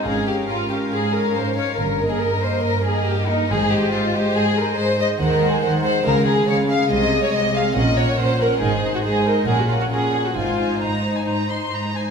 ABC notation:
X:1
M:4/4
L:1/16
Q:1/4=140
K:Ab
V:1 name="Violin section"
f2 f4 f4 f4 f2 | z2 e4 e4 e4 e2 | e2 e4 e4 e4 e2 | [K:Abmix] g2 g2 g2 g2 f2 f2 f2 f2 |
e2 e2 e2 e2 g2 g2 g2 g2 | e2 e2 e2 e2 g2 g2 g2 g2 | a2 a2 b3 a b2 c'2 b2 a2 |]
V:2 name="Violin section"
A2 G2 F2 G2 A2 B2 c2 d2 | B3 A B2 c2 B2 A2 G2 E2 | A2 G2 F2 G2 A2 B2 c2 e2 | [K:Abmix] B3 A B2 c2 B2 A2 d2 f2 |
e3 d e2 f2 e2 d2 c2 B2 | A3 G A2 B2 A G F G A3 G | F4 E8 z4 |]
V:3 name="Viola section"
[DB]2 [DB]4 [DB]4 [DB]4 [DB]2 | z2 [B,B]4 [B,B]4 [B,B]4 [B,B]2 | [A,c]2 [A,c]4 [A,c]4 [A,c]4 [A,c]2 | [K:Abmix] [A,c]2 [A,c]2 [A,c]2 [A,c]2 [A,A]2 [A,A]2 [A,A]2 [A,A]2 |
[A,A]2 [A,A]2 [A,A]2 [A,A]2 [DB]2 [DB]2 [DB]2 [DB]2 | [Ec]2 [Ec]2 [Ec]2 [Ec]2 [DB]2 [DB]2 [DB]2 [DB]2 | [Ec]2 [Ec]2 [Ec]2 [Ec]2 [Ec]2 [Ec]2 [Ec]2 [Ec]2 |]
V:4 name="Cello section" clef=bass
A,,4 A,,4 A,,4 A,,4 | G,,4 G,,4 G,,4 G,,4 | A,,4 A,,4 A,,4 A,,4 | [K:Abmix] E,4 E,4 D,4 D,4 |
C,4 C,4 B,,4 B,,4 | A,,4 A,,4 B,,4 B,,4 | A,,4 A,,4 A,,4 A,,4 |]
V:5 name="Double bass section" clef=bass
A,,,4 z12 | G,,,4 z12 | A,,,4 z12 | [K:Abmix] E,,4 z4 D,,4 z4 |
C,,4 z4 B,,,4 z4 | A,,,4 z4 B,,,4 z4 | A,,,4 z12 |]